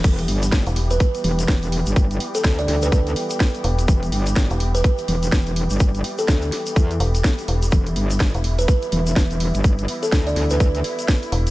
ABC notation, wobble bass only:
X:1
M:4/4
L:1/16
Q:"Swing 16ths" 1/4=125
K:Em
V:1 name="Wobble bass" clef=bass
E,,,2 G,,,3 z4 z E,,,2 E,,,3 G,,,- | G,,,2 z2 D,,2 D,,4 z6 | E,,,2 G,,,3 z4 z E,,,2 E,,,3 G,,,- | G,,,2 z2 D,,2 z2 E,,2 z6 |
E,,,2 G,,,3 z4 z E,,,2 E,,,3 G,,,- | G,,,2 z2 D,,2 D,,4 z6 |]